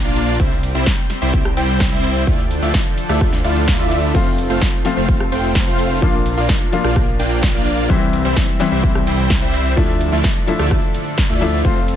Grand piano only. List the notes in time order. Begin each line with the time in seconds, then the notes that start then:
4.14 F3 A3 C4 F4
4.85 F3 A3 C4 F4
6.01 F3 A#3 D4 F4
6.72 F3 A#3 D4 F4
7.89 E3 G3 C4 E4
8.60 E3 G3 C4 E4
9.76 F3 A3 D4 E4
10.47 F3 A3 D4 E4
11.41 F3 A3 D4 E4
11.64 F3 A3 C4 F4